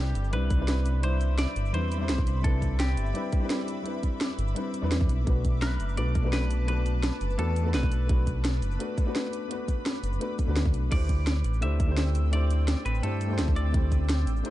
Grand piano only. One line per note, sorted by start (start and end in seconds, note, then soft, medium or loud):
0.00 0.29 G3 medium
0.00 0.30 C4 medium
0.00 0.31 D4 medium
0.00 0.31 E4 medium
0.00 0.32 B4 medium
0.31 0.55 G3 medium
0.31 0.57 C4 medium
0.31 0.57 D4 medium
0.31 0.58 E4 medium
0.31 0.58 B4 medium
0.57 0.99 G3 medium
0.57 1.00 C4 medium
0.57 1.01 D4 medium
0.57 1.02 E4 medium
0.62 1.03 B4 loud
1.01 1.71 G3 medium
1.01 1.71 C4 medium
1.01 1.72 D4 medium
1.01 1.72 E4 medium
1.06 1.73 C5 medium
1.73 1.96 G3 medium
1.73 1.98 C4 medium
1.73 1.99 D4 medium
1.73 1.99 E4 medium
1.73 1.99 B4 medium
1.98 2.40 G3 loud
1.98 2.42 C4 medium
1.98 2.42 D4 medium
1.98 2.43 E4 medium
2.03 2.44 C5 loud
2.42 3.12 G3 medium
2.42 3.12 C4 medium
2.42 3.13 D4 medium
2.42 3.14 E4 medium
2.47 3.14 B4 medium
3.14 3.38 G3 medium
3.14 3.39 C4 medium
3.14 3.40 D4 medium
3.14 3.40 E4 medium
3.14 3.40 B4 medium
3.39 3.81 G3 medium
3.39 3.83 C4 medium
3.39 3.84 D4 medium
3.39 3.84 E4 medium
3.44 3.85 B4 loud
3.83 4.53 G3 medium
3.83 4.54 C4 medium
3.83 4.54 D4 medium
3.83 4.55 E4 medium
3.88 4.55 B4 medium
4.55 4.80 G3 medium
4.55 4.81 C4 medium
4.55 4.81 D4 medium
4.55 4.81 E4 medium
4.55 4.81 B4 medium
4.82 5.08 G3 loud
4.82 5.08 C4 medium
4.82 5.08 D4 medium
4.82 5.09 E4 medium
4.82 5.09 B4 loud
5.24 5.94 A3 medium
5.24 5.95 B3 medium
5.24 5.95 D4 medium
5.24 5.96 F#4 medium
5.29 5.97 B4 medium
5.96 6.20 A3 medium
5.96 6.22 B3 medium
5.96 6.22 D4 medium
5.96 6.22 F#4 medium
5.96 6.23 B4 medium
6.22 6.64 A3 loud
6.22 6.65 B3 medium
6.22 6.66 D4 medium
6.22 6.67 F#4 medium
6.27 6.67 B4 loud
6.65 7.35 A3 medium
6.65 7.36 B3 medium
6.65 7.37 D4 medium
6.65 7.37 F#4 medium
6.71 7.38 B4 medium
7.37 7.61 A3 medium
7.37 7.63 B3 medium
7.37 7.63 D4 medium
7.37 7.64 F#4 medium
7.37 7.64 B4 medium
7.63 8.05 A3 loud
7.63 8.06 B3 medium
7.63 8.07 D4 medium
7.63 8.08 F#4 medium
7.68 8.08 B4 loud
8.07 8.77 A3 medium
8.07 8.77 B3 medium
8.07 8.78 D4 medium
8.07 8.78 F#4 medium
8.12 8.79 B4 medium
8.79 9.03 A3 medium
8.79 9.04 B3 medium
8.79 9.05 D4 medium
8.79 9.05 F#4 medium
8.79 9.05 B4 medium
9.04 9.46 A3 loud
9.04 9.48 B3 medium
9.04 9.48 D4 medium
9.04 9.49 F#4 medium
9.09 9.50 B4 loud
9.48 10.18 A3 medium
9.48 10.18 B3 medium
9.48 10.19 D4 medium
9.48 10.20 F#4 medium
9.53 10.20 B4 medium
10.20 10.44 A3 medium
10.20 10.45 B3 medium
10.20 10.46 D4 medium
10.20 10.46 F#4 medium
10.20 10.46 B4 loud
10.45 10.87 A3 medium
10.45 10.89 B3 medium
10.45 10.89 D4 medium
10.45 10.90 F#4 medium
10.50 10.91 B4 loud
10.89 11.59 A3 medium
10.89 11.60 D4 medium
10.89 11.60 E4 medium
10.89 11.61 G4 medium
10.94 11.61 C5 medium
11.61 11.85 A3 medium
11.61 11.86 D4 medium
11.61 11.87 E4 medium
11.61 11.87 G4 medium
11.61 11.87 C5 medium
11.86 12.29 A3 medium
11.86 12.30 D4 medium
11.86 12.31 E4 medium
11.86 12.31 G4 medium
11.91 12.32 C5 loud
12.30 13.00 A3 medium
12.30 13.01 D4 medium
12.30 13.01 E4 medium
12.30 13.02 G4 medium
12.35 13.02 C5 medium
13.02 13.26 A3 medium
13.02 13.27 D4 medium
13.02 13.28 E4 medium
13.02 13.28 G4 medium
13.02 13.29 C5 medium
13.28 13.70 A3 medium
13.28 13.71 D4 medium
13.28 13.72 E4 medium
13.28 13.72 G4 medium
13.33 13.73 C5 loud
13.71 14.41 A3 medium
13.71 14.42 D4 medium
13.71 14.43 E4 medium
13.71 14.43 G4 medium
13.77 14.44 C5 medium
14.43 14.50 A3 medium
14.43 14.50 D4 medium
14.43 14.50 E4 medium
14.43 14.50 G4 medium
14.43 14.50 C5 medium